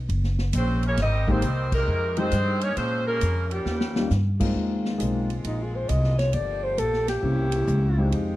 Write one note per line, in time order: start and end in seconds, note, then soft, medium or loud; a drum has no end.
0.09 0.52 F#1 medium
0.09 kick soft
0.09 ride medium
0.24 snare soft
0.38 snare soft
0.53 0.97 A#1 loud
0.53 0.83 G#3 medium
0.53 0.82 C4 medium
0.53 0.83 E4 medium
0.53 kick soft
0.53 hi-hat pedal medium
0.53 ride medium
0.57 0.83 C#4 medium
0.57 0.83 C5 medium
0.83 0.99 E3 medium
0.83 1.00 A#3 medium
0.83 0.99 C#4 medium
0.83 ride medium
0.88 1.00 A#3 medium
0.88 1.01 E4 medium
0.88 1.00 G#4 medium
0.88 1.01 C#5 loud
0.97 1.41 G#1 medium
0.97 1.27 G3 medium
0.97 1.26 C4 medium
0.97 1.26 D#4 medium
0.97 kick soft
0.97 snare soft
0.97 ride medium
1.02 1.28 C4 medium
1.02 1.28 G4 loud
1.02 1.28 A#4 loud
1.02 1.28 D#5 loud
1.28 1.41 D#3 medium
1.28 1.72 D#3 medium
1.28 1.73 G3 medium
1.28 1.41 G#3 medium
1.28 1.41 A#3 medium
1.28 1.74 A#3 medium
1.28 1.41 C4 medium
1.28 1.73 C4 medium
1.28 1.72 D#4 medium
1.28 1.41 G4 medium
1.28 1.73 G4 medium
1.28 1.74 C5 medium
1.28 kick medium
1.42 1.86 C2 medium
1.42 kick soft
1.42 hi-hat pedal soft
1.42 ride medium
1.72 2.14 C3 medium
1.72 2.14 D#3 medium
1.72 2.15 G#3 medium
1.72 2.14 A#3 medium
1.72 2.14 D#4 medium
1.72 2.15 G4 medium
1.72 2.15 A#4 loud
1.72 kick medium
1.72 crash medium
1.88 2.31 F2 medium
2.17 2.62 D#3 medium
2.17 2.31 F3 medium
2.17 2.31 G#3 medium
2.17 2.62 G#3 medium
2.17 2.62 C4 medium
2.17 2.31 C4 medium
2.17 2.61 D#4 medium
2.17 2.31 D#4 medium
2.17 2.61 G4 medium
2.17 2.31 G4 medium
2.17 2.62 C5 loud
2.17 ride soft
2.31 2.75 G2 loud
2.31 kick soft
2.31 hi-hat pedal medium
2.31 ride medium
2.61 2.77 A#3 medium
2.61 2.77 C#4 medium
2.61 2.77 D#4 medium
2.61 2.77 G4 medium
2.61 2.77 C#5 loud
2.61 ride medium
2.75 3.20 A#2 medium
2.75 3.03 F3 medium
2.75 3.03 G#3 medium
2.75 3.05 G#3 medium
2.75 3.04 C4 medium
2.75 3.05 C#4 medium
2.75 3.05 F4 medium
2.75 3.04 C5 medium
2.75 kick soft
2.75 ride medium
3.05 3.47 C#3 medium
3.05 3.47 F3 medium
3.05 3.49 G#3 medium
3.05 3.47 A#3 medium
3.05 3.48 C#4 medium
3.05 3.49 F4 medium
3.05 3.48 A#4 loud
3.21 3.65 F2 medium
3.21 kick soft
3.21 hi-hat pedal soft
3.21 ride medium
3.49 4.10 A#2 medium
3.49 4.10 C#3 medium
3.49 4.11 F3 medium
3.49 4.10 G3 medium
3.49 4.11 A#3 medium
3.49 4.11 C#4 medium
3.49 4.11 G4 medium
3.49 ride soft
3.66 4.09 D#2 medium
3.66 snare soft
3.81 snare medium
3.96 4.09 G3 medium
3.96 4.09 A#3 medium
3.96 4.10 C#4 medium
3.96 4.10 D#4 medium
3.96 4.10 F4 medium
3.96 snare medium
4.10 4.54 G2 medium
4.10 snare medium
4.10 hi-hat pedal soft
4.40 4.96 G#3 medium
4.40 4.97 A#3 medium
4.40 4.97 C4 medium
4.40 4.97 D#4 medium
4.40 4.97 F4 medium
4.40 kick medium
4.40 crash medium
4.56 4.99 D#2 medium
4.56 6.32 G#3 medium
4.56 8.09 A#3 medium
4.56 6.32 C4 medium
4.56 6.32 F4 medium
4.56 kick soft
4.85 snare soft
4.98 5.44 B1 medium
4.98 5.26 G#3 medium
4.98 5.26 A#3 medium
4.98 5.26 C4 medium
4.98 5.26 D#4 medium
4.98 5.26 F4 medium
4.98 kick soft
4.98 hi-hat pedal medium
4.98 ride medium
5.30 ride soft
5.44 5.88 A#1 medium
5.44 5.64 D#4 medium
5.44 kick soft
5.44 ride medium
5.63 5.77 G#4 medium
5.75 5.90 C5 medium
5.89 6.32 C2 loud
5.89 6.18 D#5 medium
5.89 kick soft
5.89 hi-hat pedal medium
5.89 ride medium
6.04 snare soft
6.18 6.35 C#5 medium
6.18 snare soft
6.18 ride soft
6.33 6.77 G1 medium
6.33 7.22 F3 medium
6.33 7.22 A3 medium
6.33 7.22 G4 medium
6.33 6.65 D5 medium
6.33 kick soft
6.33 ride medium
6.63 6.80 C5 medium
6.78 7.21 A#1 medium
6.78 7.08 A4 medium
6.78 kick soft
6.78 hi-hat pedal soft
6.78 ride medium
6.93 snare soft
7.08 8.09 G4 medium
7.08 snare soft
7.08 ride medium
7.22 7.66 C2 medium
7.22 8.11 C#3 medium
7.22 7.91 A#3 soft
7.22 7.91 C4 soft
7.22 7.91 C#4 soft
7.22 8.11 E4 medium
7.22 7.91 E4 soft
7.22 7.91 G4 medium
7.22 kick soft
7.52 ride medium
7.67 8.11 C#2 loud
7.67 kick soft
7.67 hi-hat pedal medium
7.98 8.36 G#3 medium
7.98 8.36 C4 medium
7.98 8.36 D#4 medium
7.98 8.36 F4 medium
7.98 8.36 G4 medium
8.12 8.36 F2 medium
8.12 8.36 G#3 medium
8.12 8.36 D#4 medium
8.12 8.36 F4 medium
8.12 8.36 G4 medium
8.12 kick soft
8.12 ride medium